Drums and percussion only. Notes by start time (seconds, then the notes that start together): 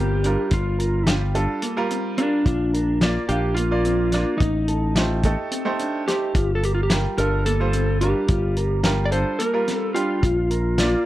0.24 closed hi-hat
0.51 kick, closed hi-hat
0.80 closed hi-hat
1.07 snare, closed hi-hat
1.35 closed hi-hat
1.62 closed hi-hat
1.91 closed hi-hat
2.18 closed hi-hat
2.46 kick, closed hi-hat
2.74 closed hi-hat
3.01 snare, closed hi-hat
3.29 closed hi-hat
3.56 closed hi-hat
3.85 closed hi-hat
4.12 snare, closed hi-hat
4.40 kick, closed hi-hat
4.68 closed hi-hat
4.96 snare, closed hi-hat
5.23 kick, closed hi-hat
5.51 closed hi-hat
5.79 closed hi-hat
6.08 snare, closed hi-hat
6.35 kick, closed hi-hat
6.63 closed hi-hat
6.90 snare, closed hi-hat
7.18 closed hi-hat
7.46 closed hi-hat
7.73 closed hi-hat
8.01 closed hi-hat
8.28 kick, closed hi-hat
8.57 closed hi-hat
8.84 snare, closed hi-hat
9.12 closed hi-hat
9.40 closed hi-hat
9.68 snare, closed hi-hat
9.96 closed hi-hat
10.23 kick, closed hi-hat
10.51 closed hi-hat
10.78 snare, closed hi-hat